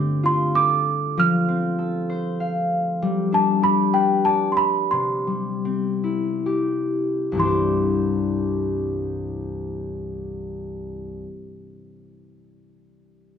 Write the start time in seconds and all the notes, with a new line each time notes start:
Already playing: D3 A3 C4 D4 G4 D6
0.23 F4 C6
0.55 A4 D6
1.17 F3 F6
1.48 C4
1.79 A4
2.10 C5
2.40 F5
3.02 G3
3.32 D4 A5
3.62 G4 B5
3.93 B4 G5
4.25 D5 A5
4.52 C6
4.57 B5
4.91 C3 C6
5.27 G3
5.65 C4
6.04 E4
6.46 G4
7.32 C2 G2
7.37 E3 D4 C6
7.43 G4 C5